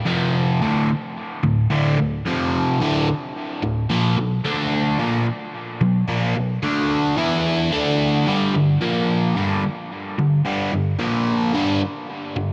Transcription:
overdriven electric guitar
0.06 F2 C3 F3
0.61 D2 A2 D3
1.43 D2 A2
1.70 D2 A2 D3
1.98 D2 A2
2.25 F2 C3 F3
2.80 D2 A2 D3
3.62 D2 A2
3.90 A#2 F3 A#3
4.18 B2 F#3
4.45 D3 A3 D4
4.99 A#2 F3 A#3
5.81 B2 F#3
6.08 A#2 F3 A#3
6.35 B2 F#3
6.63 D3 A3 D4
7.17 E3 B3 E4
7.72 D3 A3 D4
8.26 G2 D3 G3
8.54 G2 D3
8.81 A#2 F3 A#3
9.36 G2 D3 G3
10.18 G2 D3
10.45 G2 D3 G3
10.72 G2 D3
10.99 A#2 F3 A#3
11.54 G2 D3 G3
12.36 G2 D3

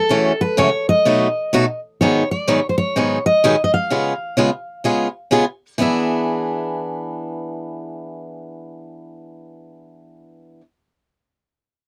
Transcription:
steel-string acoustic guitar
Already playing: A4
0.09 F#2 C#3 E3 A3 C#4 F#4
0.41 B4
0.57 F#2 C#3 E3 A3 C#4 F#4 C#5
0.89 D#5
1.05 B2 F#3 A3 D#4 F#4
1.53 B2 F#3 A3 D#4 F#4
2.01 G#2 D#3 F#3 B3 D#4 G#4 C#5
2.31 D5
2.48 G#2 D#3 F#3 B3 D#4 G#4
2.69 C5
2.78 C#5
2.96 G#2 D#3 F#3 B3 D#4 G#4
3.26 D#5
3.44 G#2 D#3 F#3 B3 D#4 G#4
3.64 D#5
3.74 F5
3.90 C#3 G#3 B3 F4 G#4
4.37 C#3 G#3 B3 F4 G#4
4.84 C#3 G#3 B3 F4 G#4
5.31 C#3 G#3 B3 F4 G#4
5.78 E3 B3 D4 G#4 E5

